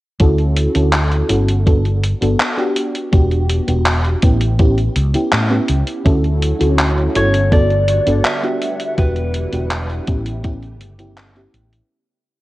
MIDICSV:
0, 0, Header, 1, 7, 480
1, 0, Start_track
1, 0, Key_signature, 2, "major"
1, 0, Tempo, 731707
1, 133, Time_signature, 4, 2, 24, 8
1, 8142, End_track
2, 0, Start_track
2, 0, Title_t, "Lead electric guitar"
2, 0, Program_c, 0, 29
2, 4699, Note_on_c, 0, 73, 93
2, 4935, Note_off_c, 0, 73, 0
2, 4938, Note_on_c, 0, 74, 97
2, 5416, Note_off_c, 0, 74, 0
2, 5419, Note_on_c, 0, 76, 106
2, 5869, Note_off_c, 0, 76, 0
2, 5897, Note_on_c, 0, 71, 86
2, 7549, Note_off_c, 0, 71, 0
2, 8142, End_track
3, 0, Start_track
3, 0, Title_t, "FM electric piano"
3, 0, Program_c, 1, 5
3, 130, Note_on_c, 1, 61, 87
3, 133, Note_on_c, 1, 64, 78
3, 137, Note_on_c, 1, 66, 77
3, 140, Note_on_c, 1, 69, 94
3, 463, Note_off_c, 1, 61, 0
3, 464, Note_off_c, 1, 64, 0
3, 466, Note_off_c, 1, 66, 0
3, 468, Note_off_c, 1, 69, 0
3, 489, Note_on_c, 1, 61, 71
3, 492, Note_on_c, 1, 64, 65
3, 494, Note_on_c, 1, 66, 66
3, 498, Note_on_c, 1, 69, 77
3, 822, Note_off_c, 1, 61, 0
3, 823, Note_off_c, 1, 64, 0
3, 824, Note_off_c, 1, 66, 0
3, 826, Note_off_c, 1, 69, 0
3, 845, Note_on_c, 1, 61, 83
3, 849, Note_on_c, 1, 64, 74
3, 851, Note_on_c, 1, 66, 73
3, 856, Note_on_c, 1, 69, 87
3, 1060, Note_off_c, 1, 61, 0
3, 1062, Note_off_c, 1, 64, 0
3, 1063, Note_off_c, 1, 66, 0
3, 1066, Note_off_c, 1, 69, 0
3, 1087, Note_on_c, 1, 59, 89
3, 1091, Note_on_c, 1, 62, 80
3, 1094, Note_on_c, 1, 66, 83
3, 1096, Note_on_c, 1, 69, 98
3, 1183, Note_off_c, 1, 59, 0
3, 1185, Note_off_c, 1, 62, 0
3, 1186, Note_off_c, 1, 66, 0
3, 1188, Note_off_c, 1, 69, 0
3, 1449, Note_on_c, 1, 59, 79
3, 1451, Note_on_c, 1, 62, 69
3, 1455, Note_on_c, 1, 66, 74
3, 1459, Note_on_c, 1, 69, 85
3, 1662, Note_off_c, 1, 59, 0
3, 1663, Note_off_c, 1, 62, 0
3, 1665, Note_off_c, 1, 66, 0
3, 1667, Note_off_c, 1, 69, 0
3, 1687, Note_on_c, 1, 59, 82
3, 1692, Note_on_c, 1, 62, 82
3, 1694, Note_on_c, 1, 66, 78
3, 1697, Note_on_c, 1, 67, 97
3, 2021, Note_off_c, 1, 59, 0
3, 2023, Note_off_c, 1, 62, 0
3, 2024, Note_off_c, 1, 66, 0
3, 2026, Note_off_c, 1, 67, 0
3, 2048, Note_on_c, 1, 59, 87
3, 2051, Note_on_c, 1, 62, 78
3, 2055, Note_on_c, 1, 66, 79
3, 2058, Note_on_c, 1, 67, 96
3, 2382, Note_off_c, 1, 59, 0
3, 2384, Note_off_c, 1, 62, 0
3, 2385, Note_off_c, 1, 66, 0
3, 2387, Note_off_c, 1, 67, 0
3, 2411, Note_on_c, 1, 59, 71
3, 2414, Note_on_c, 1, 62, 67
3, 2417, Note_on_c, 1, 66, 68
3, 2420, Note_on_c, 1, 67, 78
3, 2742, Note_off_c, 1, 59, 0
3, 2744, Note_off_c, 1, 62, 0
3, 2746, Note_off_c, 1, 66, 0
3, 2747, Note_off_c, 1, 67, 0
3, 2772, Note_on_c, 1, 59, 85
3, 2775, Note_on_c, 1, 61, 76
3, 2777, Note_on_c, 1, 64, 72
3, 2782, Note_on_c, 1, 67, 89
3, 2983, Note_off_c, 1, 59, 0
3, 2985, Note_off_c, 1, 61, 0
3, 2986, Note_off_c, 1, 64, 0
3, 2988, Note_off_c, 1, 67, 0
3, 3011, Note_on_c, 1, 59, 88
3, 3014, Note_on_c, 1, 61, 85
3, 3016, Note_on_c, 1, 64, 84
3, 3020, Note_on_c, 1, 67, 101
3, 3105, Note_off_c, 1, 59, 0
3, 3107, Note_off_c, 1, 61, 0
3, 3108, Note_off_c, 1, 64, 0
3, 3110, Note_off_c, 1, 67, 0
3, 3371, Note_on_c, 1, 59, 77
3, 3373, Note_on_c, 1, 61, 73
3, 3376, Note_on_c, 1, 64, 75
3, 3380, Note_on_c, 1, 67, 88
3, 3583, Note_off_c, 1, 59, 0
3, 3584, Note_off_c, 1, 61, 0
3, 3585, Note_off_c, 1, 64, 0
3, 3588, Note_off_c, 1, 67, 0
3, 3606, Note_on_c, 1, 59, 91
3, 3610, Note_on_c, 1, 61, 81
3, 3612, Note_on_c, 1, 64, 78
3, 3617, Note_on_c, 1, 67, 99
3, 3940, Note_off_c, 1, 59, 0
3, 3942, Note_off_c, 1, 61, 0
3, 3943, Note_off_c, 1, 64, 0
3, 3946, Note_off_c, 1, 67, 0
3, 3967, Note_on_c, 1, 61, 89
3, 3970, Note_on_c, 1, 64, 82
3, 3972, Note_on_c, 1, 66, 81
3, 3977, Note_on_c, 1, 69, 97
3, 4301, Note_off_c, 1, 61, 0
3, 4303, Note_off_c, 1, 64, 0
3, 4304, Note_off_c, 1, 66, 0
3, 4306, Note_off_c, 1, 69, 0
3, 4323, Note_on_c, 1, 61, 73
3, 4328, Note_on_c, 1, 64, 69
3, 4331, Note_on_c, 1, 66, 68
3, 4333, Note_on_c, 1, 69, 79
3, 4659, Note_off_c, 1, 61, 0
3, 4661, Note_off_c, 1, 64, 0
3, 4662, Note_off_c, 1, 66, 0
3, 4664, Note_off_c, 1, 69, 0
3, 4689, Note_on_c, 1, 61, 81
3, 4690, Note_on_c, 1, 64, 76
3, 4694, Note_on_c, 1, 66, 76
3, 4698, Note_on_c, 1, 69, 89
3, 4902, Note_off_c, 1, 61, 0
3, 4903, Note_off_c, 1, 64, 0
3, 4904, Note_off_c, 1, 66, 0
3, 4907, Note_off_c, 1, 69, 0
3, 4930, Note_on_c, 1, 59, 92
3, 4932, Note_on_c, 1, 62, 86
3, 4935, Note_on_c, 1, 66, 85
3, 4939, Note_on_c, 1, 69, 103
3, 5025, Note_off_c, 1, 59, 0
3, 5026, Note_off_c, 1, 62, 0
3, 5027, Note_off_c, 1, 66, 0
3, 5029, Note_off_c, 1, 69, 0
3, 5289, Note_on_c, 1, 59, 81
3, 5294, Note_on_c, 1, 62, 73
3, 5297, Note_on_c, 1, 66, 74
3, 5301, Note_on_c, 1, 69, 89
3, 5502, Note_off_c, 1, 59, 0
3, 5505, Note_off_c, 1, 62, 0
3, 5506, Note_off_c, 1, 66, 0
3, 5508, Note_off_c, 1, 69, 0
3, 5528, Note_on_c, 1, 59, 87
3, 5531, Note_on_c, 1, 62, 82
3, 5535, Note_on_c, 1, 66, 81
3, 5537, Note_on_c, 1, 67, 96
3, 5861, Note_off_c, 1, 59, 0
3, 5863, Note_off_c, 1, 62, 0
3, 5865, Note_off_c, 1, 66, 0
3, 5866, Note_off_c, 1, 67, 0
3, 5888, Note_on_c, 1, 59, 91
3, 5891, Note_on_c, 1, 62, 81
3, 5893, Note_on_c, 1, 66, 82
3, 5897, Note_on_c, 1, 67, 100
3, 6222, Note_off_c, 1, 59, 0
3, 6223, Note_off_c, 1, 62, 0
3, 6224, Note_off_c, 1, 66, 0
3, 6226, Note_off_c, 1, 67, 0
3, 6247, Note_on_c, 1, 59, 74
3, 6250, Note_on_c, 1, 62, 65
3, 6253, Note_on_c, 1, 66, 67
3, 6256, Note_on_c, 1, 67, 80
3, 6580, Note_off_c, 1, 59, 0
3, 6582, Note_off_c, 1, 62, 0
3, 6583, Note_off_c, 1, 66, 0
3, 6585, Note_off_c, 1, 67, 0
3, 6605, Note_on_c, 1, 59, 81
3, 6608, Note_on_c, 1, 61, 77
3, 6612, Note_on_c, 1, 64, 77
3, 6615, Note_on_c, 1, 67, 89
3, 6820, Note_off_c, 1, 59, 0
3, 6822, Note_off_c, 1, 61, 0
3, 6823, Note_off_c, 1, 64, 0
3, 6825, Note_off_c, 1, 67, 0
3, 6843, Note_on_c, 1, 59, 93
3, 6847, Note_on_c, 1, 61, 89
3, 6850, Note_on_c, 1, 64, 86
3, 6853, Note_on_c, 1, 67, 103
3, 6941, Note_off_c, 1, 59, 0
3, 6943, Note_off_c, 1, 61, 0
3, 6944, Note_off_c, 1, 64, 0
3, 6946, Note_off_c, 1, 67, 0
3, 7207, Note_on_c, 1, 59, 83
3, 7210, Note_on_c, 1, 61, 76
3, 7214, Note_on_c, 1, 64, 74
3, 7216, Note_on_c, 1, 67, 92
3, 7421, Note_off_c, 1, 59, 0
3, 7422, Note_off_c, 1, 61, 0
3, 7424, Note_off_c, 1, 64, 0
3, 7426, Note_off_c, 1, 67, 0
3, 7446, Note_on_c, 1, 59, 87
3, 7452, Note_on_c, 1, 61, 83
3, 7453, Note_on_c, 1, 64, 82
3, 7456, Note_on_c, 1, 67, 96
3, 7780, Note_off_c, 1, 59, 0
3, 7783, Note_off_c, 1, 61, 0
3, 7784, Note_off_c, 1, 64, 0
3, 7785, Note_off_c, 1, 67, 0
3, 8142, End_track
4, 0, Start_track
4, 0, Title_t, "String machine"
4, 0, Program_c, 2, 50
4, 3968, Note_on_c, 2, 50, 84
4, 3968, Note_on_c, 2, 54, 76
4, 3970, Note_on_c, 2, 57, 78
4, 3970, Note_on_c, 2, 61, 75
4, 3971, Note_on_c, 2, 66, 91
4, 4921, Note_off_c, 2, 54, 0
4, 4922, Note_off_c, 2, 61, 0
4, 4922, Note_off_c, 2, 66, 0
4, 4928, Note_on_c, 2, 55, 73
4, 4929, Note_on_c, 2, 59, 74
4, 4929, Note_on_c, 2, 78, 88
4, 5634, Note_off_c, 2, 57, 0
4, 5648, Note_on_c, 2, 64, 75
4, 6584, Note_off_c, 2, 50, 0
4, 6594, Note_off_c, 2, 59, 0
4, 6594, Note_off_c, 2, 78, 0
4, 6609, Note_on_c, 2, 57, 75
4, 6610, Note_on_c, 2, 49, 83
4, 6611, Note_on_c, 2, 67, 88
4, 7784, Note_off_c, 2, 55, 0
4, 7788, Note_off_c, 2, 64, 0
4, 7799, Note_off_c, 2, 49, 0
4, 7799, Note_off_c, 2, 57, 0
4, 7800, Note_off_c, 2, 67, 0
4, 8142, End_track
5, 0, Start_track
5, 0, Title_t, "Fretless electric bass"
5, 0, Program_c, 3, 35
5, 135, Note_on_c, 3, 38, 94
5, 436, Note_off_c, 3, 38, 0
5, 496, Note_on_c, 3, 38, 87
5, 795, Note_off_c, 3, 38, 0
5, 852, Note_on_c, 3, 31, 93
5, 1394, Note_off_c, 3, 31, 0
5, 1456, Note_on_c, 3, 31, 77
5, 1538, Note_off_c, 3, 31, 0
5, 2056, Note_on_c, 3, 28, 97
5, 2356, Note_off_c, 3, 28, 0
5, 2416, Note_on_c, 3, 28, 90
5, 2716, Note_off_c, 3, 28, 0
5, 2776, Note_on_c, 3, 33, 91
5, 3196, Note_off_c, 3, 33, 0
5, 3255, Note_on_c, 3, 37, 94
5, 3373, Note_off_c, 3, 37, 0
5, 3496, Note_on_c, 3, 45, 91
5, 3661, Note_off_c, 3, 45, 0
5, 3736, Note_on_c, 3, 37, 86
5, 3818, Note_off_c, 3, 37, 0
5, 3974, Note_on_c, 3, 38, 96
5, 4275, Note_off_c, 3, 38, 0
5, 4337, Note_on_c, 3, 38, 88
5, 4636, Note_off_c, 3, 38, 0
5, 4696, Note_on_c, 3, 31, 92
5, 5236, Note_off_c, 3, 31, 0
5, 5295, Note_on_c, 3, 31, 81
5, 5377, Note_off_c, 3, 31, 0
5, 5894, Note_on_c, 3, 28, 95
5, 6195, Note_off_c, 3, 28, 0
5, 6251, Note_on_c, 3, 28, 93
5, 6553, Note_off_c, 3, 28, 0
5, 6615, Note_on_c, 3, 33, 98
5, 7094, Note_off_c, 3, 33, 0
5, 7094, Note_on_c, 3, 31, 84
5, 7515, Note_off_c, 3, 31, 0
5, 7570, Note_on_c, 3, 33, 93
5, 7738, Note_off_c, 3, 33, 0
5, 8142, End_track
6, 0, Start_track
6, 0, Title_t, "Muted fretless electric bass strokes"
6, 3377, Note_on_c, 9, 29, 44
6, 3443, Note_off_c, 9, 29, 0
6, 8142, End_track
7, 0, Start_track
7, 0, Title_t, "Drums"
7, 129, Note_on_c, 9, 42, 51
7, 133, Note_on_c, 9, 36, 116
7, 195, Note_off_c, 9, 42, 0
7, 199, Note_off_c, 9, 36, 0
7, 252, Note_on_c, 9, 42, 27
7, 317, Note_off_c, 9, 42, 0
7, 371, Note_on_c, 9, 42, 89
7, 436, Note_off_c, 9, 42, 0
7, 491, Note_on_c, 9, 42, 53
7, 556, Note_off_c, 9, 42, 0
7, 608, Note_on_c, 9, 39, 112
7, 608, Note_on_c, 9, 42, 55
7, 674, Note_off_c, 9, 39, 0
7, 674, Note_off_c, 9, 42, 0
7, 732, Note_on_c, 9, 42, 26
7, 797, Note_off_c, 9, 42, 0
7, 849, Note_on_c, 9, 42, 95
7, 914, Note_off_c, 9, 42, 0
7, 974, Note_on_c, 9, 42, 51
7, 1039, Note_off_c, 9, 42, 0
7, 1094, Note_on_c, 9, 36, 105
7, 1095, Note_on_c, 9, 42, 52
7, 1160, Note_off_c, 9, 36, 0
7, 1161, Note_off_c, 9, 42, 0
7, 1215, Note_on_c, 9, 42, 27
7, 1281, Note_off_c, 9, 42, 0
7, 1335, Note_on_c, 9, 42, 92
7, 1400, Note_off_c, 9, 42, 0
7, 1456, Note_on_c, 9, 42, 52
7, 1522, Note_off_c, 9, 42, 0
7, 1575, Note_on_c, 9, 39, 120
7, 1575, Note_on_c, 9, 42, 54
7, 1641, Note_off_c, 9, 39, 0
7, 1641, Note_off_c, 9, 42, 0
7, 1697, Note_on_c, 9, 42, 27
7, 1762, Note_off_c, 9, 42, 0
7, 1813, Note_on_c, 9, 42, 93
7, 1879, Note_off_c, 9, 42, 0
7, 1936, Note_on_c, 9, 42, 52
7, 2001, Note_off_c, 9, 42, 0
7, 2052, Note_on_c, 9, 42, 55
7, 2054, Note_on_c, 9, 36, 115
7, 2118, Note_off_c, 9, 42, 0
7, 2120, Note_off_c, 9, 36, 0
7, 2175, Note_on_c, 9, 42, 28
7, 2240, Note_off_c, 9, 42, 0
7, 2294, Note_on_c, 9, 42, 91
7, 2360, Note_off_c, 9, 42, 0
7, 2414, Note_on_c, 9, 42, 51
7, 2480, Note_off_c, 9, 42, 0
7, 2532, Note_on_c, 9, 39, 118
7, 2532, Note_on_c, 9, 42, 55
7, 2598, Note_off_c, 9, 39, 0
7, 2598, Note_off_c, 9, 42, 0
7, 2654, Note_on_c, 9, 42, 27
7, 2720, Note_off_c, 9, 42, 0
7, 2770, Note_on_c, 9, 42, 93
7, 2774, Note_on_c, 9, 36, 107
7, 2836, Note_off_c, 9, 42, 0
7, 2840, Note_off_c, 9, 36, 0
7, 2892, Note_on_c, 9, 42, 52
7, 2958, Note_off_c, 9, 42, 0
7, 3012, Note_on_c, 9, 42, 53
7, 3014, Note_on_c, 9, 36, 106
7, 3078, Note_off_c, 9, 42, 0
7, 3080, Note_off_c, 9, 36, 0
7, 3134, Note_on_c, 9, 42, 26
7, 3200, Note_off_c, 9, 42, 0
7, 3252, Note_on_c, 9, 42, 90
7, 3318, Note_off_c, 9, 42, 0
7, 3373, Note_on_c, 9, 42, 54
7, 3439, Note_off_c, 9, 42, 0
7, 3493, Note_on_c, 9, 39, 122
7, 3493, Note_on_c, 9, 42, 56
7, 3558, Note_off_c, 9, 39, 0
7, 3558, Note_off_c, 9, 42, 0
7, 3612, Note_on_c, 9, 42, 26
7, 3677, Note_off_c, 9, 42, 0
7, 3728, Note_on_c, 9, 42, 91
7, 3794, Note_off_c, 9, 42, 0
7, 3851, Note_on_c, 9, 42, 52
7, 3917, Note_off_c, 9, 42, 0
7, 3974, Note_on_c, 9, 36, 116
7, 3974, Note_on_c, 9, 42, 52
7, 4039, Note_off_c, 9, 36, 0
7, 4039, Note_off_c, 9, 42, 0
7, 4096, Note_on_c, 9, 42, 27
7, 4161, Note_off_c, 9, 42, 0
7, 4215, Note_on_c, 9, 42, 88
7, 4280, Note_off_c, 9, 42, 0
7, 4335, Note_on_c, 9, 42, 52
7, 4400, Note_off_c, 9, 42, 0
7, 4454, Note_on_c, 9, 39, 124
7, 4454, Note_on_c, 9, 42, 53
7, 4519, Note_off_c, 9, 39, 0
7, 4519, Note_off_c, 9, 42, 0
7, 4577, Note_on_c, 9, 42, 25
7, 4642, Note_off_c, 9, 42, 0
7, 4692, Note_on_c, 9, 42, 92
7, 4758, Note_off_c, 9, 42, 0
7, 4814, Note_on_c, 9, 42, 52
7, 4880, Note_off_c, 9, 42, 0
7, 4933, Note_on_c, 9, 36, 109
7, 4933, Note_on_c, 9, 42, 52
7, 4999, Note_off_c, 9, 36, 0
7, 4999, Note_off_c, 9, 42, 0
7, 5054, Note_on_c, 9, 42, 27
7, 5119, Note_off_c, 9, 42, 0
7, 5169, Note_on_c, 9, 42, 91
7, 5235, Note_off_c, 9, 42, 0
7, 5292, Note_on_c, 9, 42, 53
7, 5358, Note_off_c, 9, 42, 0
7, 5411, Note_on_c, 9, 39, 126
7, 5411, Note_on_c, 9, 42, 53
7, 5476, Note_off_c, 9, 39, 0
7, 5476, Note_off_c, 9, 42, 0
7, 5533, Note_on_c, 9, 42, 26
7, 5599, Note_off_c, 9, 42, 0
7, 5652, Note_on_c, 9, 42, 90
7, 5718, Note_off_c, 9, 42, 0
7, 5771, Note_on_c, 9, 42, 51
7, 5837, Note_off_c, 9, 42, 0
7, 5890, Note_on_c, 9, 42, 52
7, 5892, Note_on_c, 9, 36, 116
7, 5956, Note_off_c, 9, 42, 0
7, 5958, Note_off_c, 9, 36, 0
7, 6010, Note_on_c, 9, 42, 26
7, 6075, Note_off_c, 9, 42, 0
7, 6128, Note_on_c, 9, 42, 84
7, 6193, Note_off_c, 9, 42, 0
7, 6249, Note_on_c, 9, 42, 52
7, 6314, Note_off_c, 9, 42, 0
7, 6369, Note_on_c, 9, 39, 124
7, 6369, Note_on_c, 9, 42, 52
7, 6434, Note_off_c, 9, 39, 0
7, 6434, Note_off_c, 9, 42, 0
7, 6491, Note_on_c, 9, 42, 25
7, 6557, Note_off_c, 9, 42, 0
7, 6608, Note_on_c, 9, 42, 91
7, 6613, Note_on_c, 9, 36, 108
7, 6674, Note_off_c, 9, 42, 0
7, 6678, Note_off_c, 9, 36, 0
7, 6730, Note_on_c, 9, 42, 50
7, 6796, Note_off_c, 9, 42, 0
7, 6850, Note_on_c, 9, 42, 52
7, 6852, Note_on_c, 9, 36, 110
7, 6915, Note_off_c, 9, 42, 0
7, 6918, Note_off_c, 9, 36, 0
7, 6971, Note_on_c, 9, 42, 25
7, 7037, Note_off_c, 9, 42, 0
7, 7091, Note_on_c, 9, 42, 88
7, 7156, Note_off_c, 9, 42, 0
7, 7210, Note_on_c, 9, 42, 49
7, 7276, Note_off_c, 9, 42, 0
7, 7332, Note_on_c, 9, 39, 126
7, 7332, Note_on_c, 9, 42, 53
7, 7397, Note_off_c, 9, 39, 0
7, 7397, Note_off_c, 9, 42, 0
7, 7452, Note_on_c, 9, 42, 25
7, 7518, Note_off_c, 9, 42, 0
7, 7571, Note_on_c, 9, 42, 90
7, 7636, Note_off_c, 9, 42, 0
7, 7693, Note_on_c, 9, 42, 52
7, 7759, Note_off_c, 9, 42, 0
7, 8142, End_track
0, 0, End_of_file